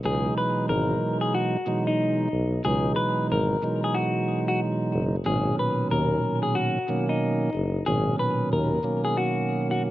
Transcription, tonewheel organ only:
0.03 B2 E3 F#3 G#3 D#4
1.66 B2 E3 F#3 G#3 D#4
2.64 B2 E3 F#3 G#3 D#4
3.62 B2 E3 F#3 G#3 D#4
5.24 A#2 B2 D#3 F#3 C#4
6.88 B2 D#3 F#3 A#3 C#4
7.86 A#2 B2 D#3 F#3 C#4
8.83 B2 D#3 F#3 A#3 C#4

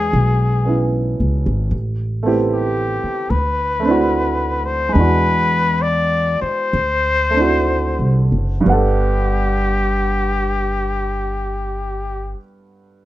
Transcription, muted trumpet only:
Already playing: G#4
2.53 G4
3.30 B4
4.65 C5
4.93 B4
5.82 D5
6.42 C5
8.68 G4

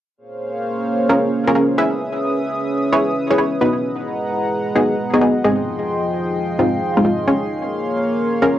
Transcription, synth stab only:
1.09 C#4 F4 G#4 A#4
1.47 C#4 F4 G#4 A#4
1.55 C#4 F4 G#4 A#4
1.78 E4 G#4 B4 E5
2.92 E4 G#4 B4 C#5
3.31 E4 G#4 B4 C#5
3.38 E4 G#4 B4 C#5
3.61 B3 D#4 F#4 B4
4.76 B3 D#4 F#4 G#4
5.14 B3 D#4 F#4 G#4
5.21 B3 D#4 F#4 G#4
5.44 G#3 C4 D#4 G#4
6.59 G#3 C4 D#4 F4
6.97 G#3 C4 D#4 F4
7.05 G#3 C4 D#4 F4
7.28 C#4 F4 G#4 C#5
8.42 C#4 F4 G#4 A#4

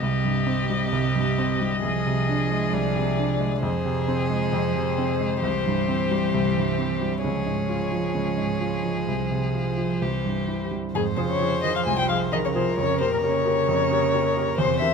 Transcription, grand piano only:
0.02 C2
0.25 G2
0.47 C4
0.70 G3
0.92 C2
1.16 G2
1.38 C4
1.61 G3
1.84 C2
2.06 C3
2.29 D4
2.51 G#3
2.73 C2
2.96 C3
3.18 D4
3.40 G#3
3.63 F2
3.85 C3
4.08 C4
4.30 G#3
4.53 F2
4.76 C3
4.98 C4
5.21 G#3
5.43 C2
5.66 G2
5.88 C4
6.11 G3
6.34 C2
6.57 G2
6.78 C4
7.01 G3
7.24 C#2
7.46 G#2
7.69 F4
7.92 F3
8.15 C#2
8.38 G#2
8.61 F4
8.84 F3
9.08 C2
9.31 C3
9.54 F4
9.77 F3
10.02 C2
10.25 G2
10.48 E4
10.71 G3
10.95 F2
11.17 F3 F4 G#4
11.40 F3 F4 G#4
11.63 F3 F4 G#4
11.86 C2
12.09 F3 F4 G#4
12.32 F3 F4 G#4
12.55 F3 F4 G#4
12.78 F2
13.00 A#3 G4 A#4
13.23 A#3 G4 A#4
13.45 A#3 G4 A#4
13.68 F2
13.91 A#3 G4 A#4
14.14 A#3 G4 A#4
14.37 A#3 G4 A#4
14.58 E2
14.81 C4 G4 A#4

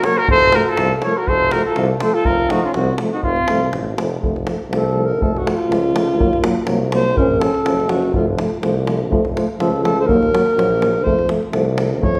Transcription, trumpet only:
0.04 C#5
0.18 A#4
0.31 C5
0.55 A#4
0.69 A4
1.04 C#5
1.17 A#4
1.28 C5
1.52 A#4
1.65 A4
2.00 C5
2.14 A4
2.26 A#4
2.50 F#4
2.64 F4
2.74 F#4
3.12 F#4
3.23 F4

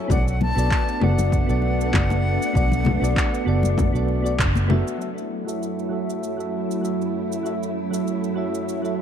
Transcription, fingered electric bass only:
0.10 B1
0.57 B1
1.02 F#1
1.49 B1
1.94 F#1
2.55 B1
3.01 B1
3.47 F#1
3.94 B1
4.39 F#1

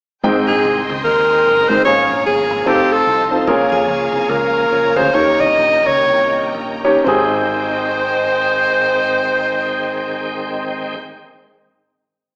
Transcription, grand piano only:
0.23 G#2 G#3 C4 D#4 G5
1.69 G#3 C4 D#4 A#4
1.86 G#2 A#3 C#4 F4 G#4
2.66 C4 D#4 F4 A4
3.31 C4 D#4 F4 A4
3.47 A#2 C#4 F4 G#4 A#4
4.96 C#4 F4 G#4 C5
5.13 D#3 C#4 D#4 G4 A4
5.19 A#4
6.84 C#4 D#4 G4 C#5
7.04 G#1 C4 D#4 G4 G#4

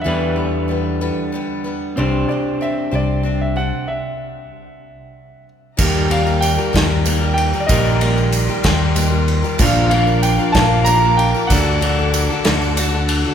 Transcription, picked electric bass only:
0.06 E2
1.98 C2
2.93 C2
5.79 D#2
6.75 D#2
7.70 A#1
8.65 D#2
9.60 A#1
10.55 A#1
11.50 D2
12.47 D2

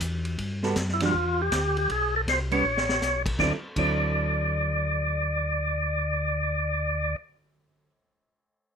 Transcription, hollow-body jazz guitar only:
0.63 G3 B3 F#4 A4
1.01 E3 G3 D4 F#4
2.51 G3 B3 C#4
3.38 D3 F#3 C4 E4
3.76 D3 F#3 C4 E4

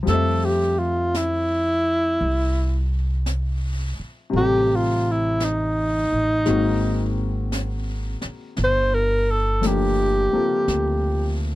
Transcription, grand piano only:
0.03 F3 G3
0.08 A3 C4
0.14 E5
4.30 C3 G3
4.35 A3 C4
4.41 G4
6.45 D#3 G#3 A#3 C4 F#4
9.61 F3 A3 A#3
9.66 D4 G4
10.33 A#3 C4 F4 A4

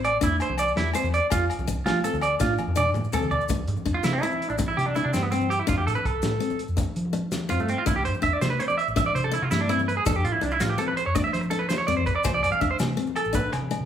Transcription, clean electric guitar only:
0.05 D5
0.23 E4
0.42 C5
0.59 D5
0.77 E4
0.95 C5
1.14 D5
1.32 F4
1.86 F4
2.04 A4
2.22 D5
2.41 F4
2.77 D5
3.14 A4
3.31 D5
3.94 F4
4.04 E4
4.13 D4
4.22 E4
4.50 D4
4.59 muted clean electric guitar stroke
4.68 E4
4.77 G4
4.86 D4
4.95 E4
5.04 D4
5.13 C4
5.22 B3
5.32 C4
5.50 G4
5.59 E4
5.69 F4
5.78 G4
5.87 A4
5.95 B4
6.06 A4
7.50 F4
7.60 A3
7.70 C4
7.78 F4
7.87 E4
7.96 G4
8.05 C5
8.23 E5
8.33 D5
8.41 C5
8.50 B4
8.60 C5
8.68 D5
8.78 E5
8.97 E5
9.06 D5
9.15 C5
9.24 A4
9.34 E4
9.42 F4
9.51 E4
9.61 D4
9.70 E4
9.88 B4
9.97 G#4
10.06 A4
10.16 G4
10.25 F4
10.33 E4
10.42 D4
10.52 E4
10.60 F4
10.70 G4
10.79 A4
10.88 B4
10.97 C5
11.06 C#5
11.15 D5
11.24 E5
11.33 C5
11.41 muted clean electric guitar stroke
11.50 A4
11.59 B4
11.69 C5
11.78 C#5
11.87 D5
11.97 C5
12.06 B4
12.16 D5
12.25 C5
12.34 D5
12.43 D5
12.52 F5
12.61 E5
12.71 C5
13.16 A4
13.35 B4
13.53 muted clean electric guitar stroke

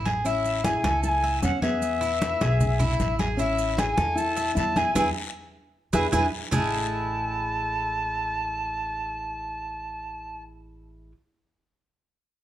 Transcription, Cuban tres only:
0.05 G#4
0.26 E4
0.65 G#4
0.84 A4
1.24 E5
1.62 G#4
2.01 E4
2.41 G#4
2.79 E4
3.19 G#4
3.39 E4
3.79 G#4
3.97 A4
4.36 E5
4.76 G#4
4.95 E4 G#4 B4
5.93 E4 G#4 B4
6.12 E4 G#4 B4
6.51 G#3 A3 E4

